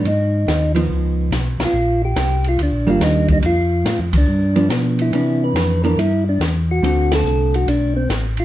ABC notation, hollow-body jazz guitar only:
X:1
M:4/4
L:1/8
Q:"Swing" 1/4=142
K:Ddor
V:1 name="Hollow-body jazz guitar"
z3 [F,_C_E]3 z2 | z4 z [_E,G,_B,D]3 | z4 z [F,B,D]3 | [E,B,D]3 [E,B,D] z4 |
[D,A,C^F]4- [D,A,CF] z3 |]